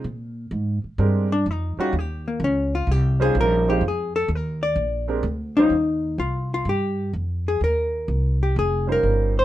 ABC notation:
X:1
M:4/4
L:1/8
Q:"Swing" 1/4=127
K:Ebmix
V:1 name="Hollow-body jazz guitar"
z4 z =D E _G | G B, D F G A B G | A =A B =d2 z2 E- | E2 F F G2 z A |
B3 G A B2 c |]
V:2 name="Grand piano"
z4 [A,C=DGB] z2 [G,_DEFG] | z4 z [G,DEFc]2 [A,CEFc] | z4 z [A,C=DGB] z [G,_DEFc] | z8 |
z4 z [G,DEFc]3 |]
V:3 name="Upright bass" clef=bass
B,,2 A,, z G,,2 F,, z | E,,2 D,,2 C,,2 B,,,2 | F,,2 E,,2 B,,,2 =D,,2 | E,,2 C,,2 G,,2 F,,2 |
E,,2 C,,2 F,,,2 G,,,2 |]